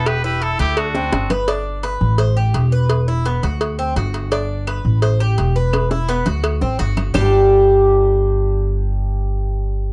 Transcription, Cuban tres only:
\new Staff \with { instrumentName = "Cuban tres" } { \time 4/4 \key g \major \tempo 4 = 169 b8 e'4 a4 c'4 b'8 | d'4 b'4 c''8 g'4 b'8~ | b'8 e'8 b8 fis'4 c'8 fis'4 | d'4 b'4 c''8 g'4 b'8~ |
b'8 e'8 b8 fis'4 c'8 fis'4 | <g d' g'>1~ | <g d' g'>1 | }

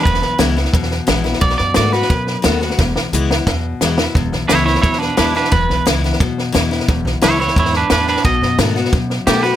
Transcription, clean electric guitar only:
\new Staff \with { instrumentName = "Clean electric guitar" } { \time 4/4 \key e \major \tempo 4 = 176 b'4 r2. | d''8 d''8 d''8 b'2~ b'8~ | b'8 r2. r8 | r4 <e' cis''>8 <e' cis''>8 <e' cis''>8 <d' b'>8 <d' b'>8 <d' b'>8 |
b'4 r2. | r4 <e' cis''>8 <e' cis''>8 <e' cis''>8 <d' b'>8 <d' b'>8 <d' b'>8 | dis''4 r2 g'8 b'8 | }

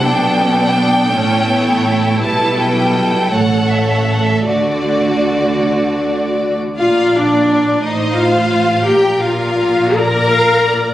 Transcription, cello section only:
\new Staff \with { instrumentName = "Cello section" } { \clef bass \time 6/8 \key d \major \tempo 4. = 55 b,4. a,4. | b,4. a,4. | d2~ d8 r8 | \key bes \major bes,4. a,4. |
bes,2. | }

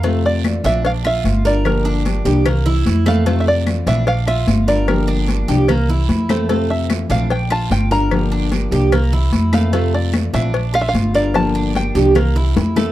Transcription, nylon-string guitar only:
\new Staff \with { instrumentName = "Nylon-string guitar" } { \time 4/4 \key f \major \tempo 4 = 148 <c a c' f'>4 <e a c' f'>8 <e a c' f'>8 r4. <g d' f'>8 | <d f bes d' g'>4 <f bes d' g'>8 <f bes d' g'>8 r4. <e bes c' e'>8 | <c a c' f'>4 <e a c' f'>8 <e a c' f'>8 r4. <g d' f'>8 | <d f bes d' g'>4 <f bes d' g'>8 <f bes d' g'>8 r4. <e bes c' e'>8 |
<c a c' f'>4 <e a c' f'>8 <e a c' f'>8 r4. <g d' f'>8 | <d f bes d' g'>4 <f bes d' g'>8 <f bes d' g'>8 r4. <e bes c' e'>8 | <c a c' f'>4 <e a c' f'>8 <e a c' f'>8 r4. <g d' f'>8 | <d f bes d' g'>4 <f bes g'>8 <f bes d' g'>8 r4. <e bes c' e'>8 | }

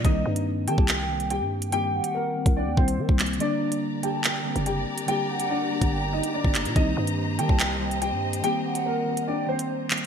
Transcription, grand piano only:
\new Staff \with { instrumentName = "Grand piano" } { \time 4/4 \key c \dorian \tempo 4 = 143 <ees' ees''>4 r8 <g' g''>4. <g' g''>4 | <g' g''>4 <bes bes'>4 <d' d''>8 <c' c''>4. | <d' d''>4 r8 <g' g''>4. <g' g''>4 | <g' g''>4 <d' d''>4. <ees' ees''>8 <d' d''>4 |
<ees' ees''>4 r8 <g' g''>4. <g' g''>4 | <g' g''>4 <bes bes'>4 <d' d''>8 <c' c''>4. | }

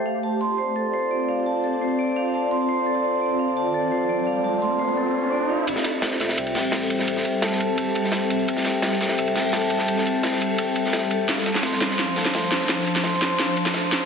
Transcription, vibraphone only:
\new Staff \with { instrumentName = "Vibraphone" } { \time 4/4 \key d \dorian \tempo 4 = 171 f''8 a''8 c'''8 c''8 a'8 c''8 d''8 f''8 | a''8 a'8 c''8 d''8 f''8 a''8 c'''8 c''8 | a'8 c''8 d''8 f''8 a''8 a'8 c''8 d''8 | f''8 a''8 c'''8 c''8 a'8 c''8 d''8 f''8 |
g'8 a'8 c''8 e''8 g''8 g'8 a'8 c''8 | e''8 g''8 a''8 a'8 g'8 a'8 r8 e''8 | g''8 g'8 a'8 c''8 e''8 g''8 a''8 a'8 | g'8 a'8 c''8 e''8 g''8 e''8 g'8 a'8 |
f''8 a''8 c'''8 c''8 f''8 a''8 c'''8 c''8 | f''8 a''8 c'''8 c''8 f''8 a''8 c'''8 c''8 | }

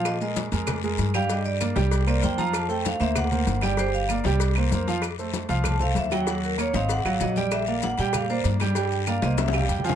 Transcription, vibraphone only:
\new Staff \with { instrumentName = "Vibraphone" } { \time 4/4 \key g \dorian \tempo 4 = 193 ees''8 ees''8 r2 r8 f''8 | ees''8 d''8 r4. d''8 g''8 bes''8 | a''8 g''8 f''8 e''8 ges''4. d''8 | c''8 f''8 r2. |
r2 a''8 f''8 e''8 g''8 | ges''8 bes'8 des''8 f''8 ges''8 f''8 ees''8 d''8 | e''8 f''8 ges''8 g''8 f''8 c''8 r4 | r8 g''8 f''8 ees''8 e''8 f''8 g''8 aes''8 | }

